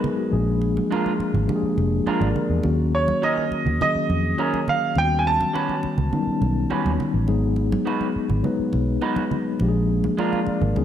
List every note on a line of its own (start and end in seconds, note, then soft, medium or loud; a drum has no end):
0.00 0.34 F#3 medium
0.00 0.31 G#3 medium
0.00 0.34 B3 medium
0.00 0.34 D#4 medium
0.00 0.03 G#4 medium
0.00 0.17 G#4 medium
0.00 0.34 A#4 medium
0.00 0.35 B4 medium
0.04 low conga medium
0.18 0.46 F#4 medium
0.31 0.79 A#1 medium
0.31 1.08 F3 medium
0.31 1.08 G#3 medium
0.31 1.08 A#3 medium
0.31 1.08 D4 medium
0.31 1.08 G#4 medium
0.62 muted conga soft
0.77 high conga medium
0.91 1.11 G#3 medium
0.91 1.11 D4 medium
0.91 1.12 F4 medium
0.91 1.12 A#4 medium
0.91 muted conga soft
1.06 high conga soft
1.19 muted fingered electric bass stroke soft
1.19 muted conga soft
1.34 1.45 G#1 medium
1.34 low conga medium
1.47 2.23 F3 medium
1.47 2.23 G#3 medium
1.47 2.24 A#3 medium
1.47 2.24 D4 medium
1.47 1.55 G4 medium
1.47 muted conga soft
1.47 low conga medium
1.56 2.10 G#4 medium
1.63 muted fingered electric bass stroke soft
1.78 2.01 F1 medium
1.78 muted conga soft
1.78 high conga medium
2.06 2.27 G#3 medium
2.06 2.27 D4 medium
2.06 2.28 F4 medium
2.06 2.21 A#4 medium
2.06 2.28 A#4 medium
2.06 muted fingered electric bass stroke soft
2.06 muted conga soft
2.21 2.32 G#1 medium
2.21 2.35 D5 medium
2.21 high conga medium
2.35 2.49 A#4 medium
2.35 low conga medium
2.50 2.61 E2 medium
2.50 2.77 G#4 medium
2.62 3.11 D#2 medium
2.62 3.39 D#3 medium
2.62 3.39 F#3 medium
2.62 3.40 A#3 medium
2.62 3.40 C#4 medium
2.62 3.40 F#4 medium
2.62 muted conga soft
2.95 3.21 C#5 medium
3.08 high conga medium
3.22 3.43 F#3 medium
3.22 3.43 C#4 medium
3.22 3.43 D#4 medium
3.22 3.44 A#4 medium
3.22 3.80 D#5 medium
3.22 muted conga soft
3.38 high conga soft
3.51 muted fingered electric bass stroke soft
3.51 muted conga soft
3.66 3.77 D#2 medium
3.66 low conga medium
3.80 4.56 D#3 medium
3.80 4.56 F#3 medium
3.80 4.56 A#3 medium
3.80 4.57 C#4 medium
3.80 4.57 G#4 medium
3.80 4.71 D#5 medium
3.80 muted conga soft
3.80 low conga medium
3.95 muted fingered electric bass stroke soft
4.10 4.33 F2 medium
4.10 high conga medium
4.38 4.59 F#3 medium
4.38 4.59 C#4 medium
4.38 4.59 D#4 medium
4.38 4.60 A#4 medium
4.38 muted conga soft
4.54 high conga medium
4.68 4.98 F5 medium
4.68 muted conga soft
4.68 low conga medium
4.96 5.42 D#2 medium
4.96 5.72 D#3 medium
4.96 5.72 G3 medium
4.96 5.72 B3 medium
4.96 5.72 C#4 soft
4.96 5.03 F4 medium
4.96 5.20 G5 medium
4.96 muted conga soft
5.04 5.76 F#4 medium
5.19 5.26 G#5 medium
5.27 6.96 A5 medium
5.41 high conga medium
5.53 5.74 G3 medium
5.53 5.75 C#4 medium
5.53 5.75 F#4 medium
5.53 5.75 B4 medium
5.53 muted conga soft
5.69 high conga soft
5.83 muted fingered electric bass stroke soft
5.83 muted conga soft
5.98 6.09 C#2 medium
5.98 low conga medium
6.12 6.88 D#3 medium
6.12 6.19 F#3 medium
6.12 6.88 B3 medium
6.12 6.88 C#4 medium
6.12 6.89 D#4 medium
6.12 low conga medium
6.19 6.91 G3 medium
6.27 muted fingered electric bass stroke soft
6.42 6.64 B1 medium
6.42 high conga medium
6.70 6.91 G3 medium
6.70 6.91 C#4 medium
6.70 6.91 F#4 medium
6.70 6.92 B4 medium
6.70 muted conga soft
6.85 6.97 D#2 medium
6.85 high conga medium
7.00 muted conga soft
7.00 low conga medium
7.14 7.25 A1 medium
7.27 7.75 G#1 medium
7.27 8.03 F#3 medium
7.27 8.03 G#3 medium
7.27 8.04 B3 medium
7.27 8.04 D#4 medium
7.27 8.04 G#4 medium
7.27 muted conga soft
7.56 muted conga soft
7.72 high conga medium
7.86 8.06 B3 medium
7.86 8.07 D#4 medium
7.86 8.07 F#4 medium
7.86 8.07 B4 medium
7.86 muted conga soft
8.01 high conga soft
8.16 muted fingered electric bass stroke soft
8.29 8.41 G#1 medium
8.29 low conga medium
8.43 9.19 F#3 medium
8.43 9.20 G#3 medium
8.43 9.20 B3 medium
8.43 9.20 D#4 medium
8.43 9.20 B4 medium
8.43 low conga medium
8.59 muted fingered electric bass stroke soft
8.73 8.97 B1 medium
8.73 muted conga soft
8.73 high conga medium
9.02 9.22 B3 medium
9.02 9.23 D#4 medium
9.02 9.23 F#4 medium
9.02 9.23 B4 medium
9.02 muted conga soft
9.16 high conga medium
9.31 low conga medium
9.60 10.07 A#1 medium
9.60 10.36 F3 medium
9.60 10.36 G#3 medium
9.60 10.36 A#3 medium
9.60 10.37 D4 medium
9.60 9.68 G4 medium
9.60 muted conga soft
9.69 10.40 G#4 medium
10.04 high conga medium
10.18 10.38 G#3 medium
10.18 10.39 D4 medium
10.18 10.39 F4 medium
10.18 10.39 A#4 medium
10.18 10.32 D5 medium
10.18 muted conga soft
10.32 10.46 F5 medium
10.32 high conga soft
10.46 10.61 D5 medium
10.46 muted fingered electric bass stroke soft
10.46 muted conga soft
10.61 10.73 G#1 medium
10.61 10.85 A#4 medium
10.61 low conga medium
10.75 10.85 C#2 medium
10.75 10.85 F#3 medium
10.75 10.85 B3 medium
10.75 10.85 C#4 medium
10.75 10.85 D#4 medium
10.75 10.85 G#4 medium
10.75 muted conga soft
10.75 low conga medium